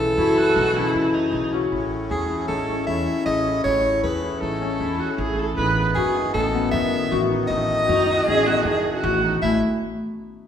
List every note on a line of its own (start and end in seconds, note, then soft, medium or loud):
0.00 0.15 B1 medium
0.00 1.71 C#3 medium
0.00 1.70 E3 medium
0.00 1.69 A3 medium
0.00 0.76 C#4 medium
0.00 0.37 E4 medium
0.00 1.33 G#4 medium
0.00 1.34 A4 medium
0.18 0.53 F#2 medium
0.18 0.39 E4 medium
0.18 1.52 F#4 medium
0.37 0.62 E4 medium
0.37 0.78 F#4 medium
0.56 0.92 B1 loud
0.56 1.01 D#4 medium
0.76 2.69 C#4 medium
0.76 1.16 E4 medium
0.95 1.30 F#2 medium
0.95 1.71 E4 medium
1.14 1.55 D#4 medium
1.32 1.69 B1 medium
1.32 2.10 G#4 medium
1.53 1.72 C#4 medium
1.53 3.96 F#4 medium
1.72 2.08 A1 medium
1.72 9.39 A2 medium
1.72 3.63 A3 medium
1.72 5.54 C#4 medium
1.72 2.30 E4 medium
2.11 2.46 E2 medium
2.11 3.27 G#4 medium
2.11 2.47 G#4 medium
2.30 2.56 E4 medium
2.48 2.85 A1 medium
2.48 2.94 D#4 medium
2.48 2.85 A4 medium
2.69 4.61 C#4 medium
2.87 3.06 E2 medium
2.87 3.46 E4 medium
2.87 3.23 E5 medium
3.25 3.62 A1 medium
3.25 4.03 G#4 medium
3.25 3.62 D#5 medium
3.47 3.65 E4 medium
3.64 4.01 A1 medium
3.64 5.56 A3 medium
3.64 4.23 E4 medium
3.64 4.00 C#5 loud
4.03 4.39 E2 medium
4.03 5.19 G#4 medium
4.03 4.42 B4 medium
4.23 4.49 E4 medium
4.40 4.78 A1 medium
4.40 4.87 D#4 medium
4.40 5.18 A4 medium
4.62 6.34 C#4 medium
4.80 4.98 E2 medium
4.80 5.01 E4 medium
4.80 5.38 E4 medium
5.00 5.19 F#4 medium
5.18 5.54 A1 medium
5.18 7.47 G#4 medium
5.18 5.41 G#4 medium
5.38 5.64 E4 medium
5.38 5.57 A4 medium
5.57 5.93 A1 medium
5.57 9.39 D#3 medium
5.57 7.49 B3 medium
5.57 6.16 D#4 medium
5.57 5.84 B4 medium
5.95 6.32 F#2 medium
5.95 7.11 F#4 medium
5.95 6.32 G#4 medium
6.16 7.30 D#4 medium
6.34 6.70 A1 medium
6.34 8.27 C#4 medium
6.34 6.70 A4 medium
6.54 8.46 B3 medium
6.71 6.91 F#2 medium
6.71 9.48 D#3 medium
6.71 7.26 E5 loud
7.11 7.48 A1 loud
7.11 7.88 F#4 medium
7.31 7.50 D#4 medium
7.48 7.86 A1 medium
7.48 9.41 A3 medium
7.48 7.74 D#4 medium
7.48 8.99 D#5 loud
7.88 8.24 F#2 medium
7.88 8.19 D#4 medium
7.88 8.01 F#4 medium
8.08 8.20 D#4 medium
8.17 8.26 F#4 medium
8.27 8.63 A1 medium
8.27 8.39 C#4 medium
8.27 8.48 G#4 loud
8.46 8.58 B3 medium
8.46 8.67 F#4 medium
8.65 8.83 F#2 medium
8.65 8.89 D#4 medium
8.65 8.93 G#4 medium
8.94 9.39 F#4 medium
9.03 9.39 A1 loud
9.03 9.15 F#4 medium
9.23 9.35 D#4 medium
9.42 9.60 A1 medium
9.42 9.61 A2 medium
9.42 9.61 G#3 medium
9.42 9.60 A3 medium
9.42 9.61 C#4 medium
9.42 9.61 E4 medium
9.42 9.60 E5 medium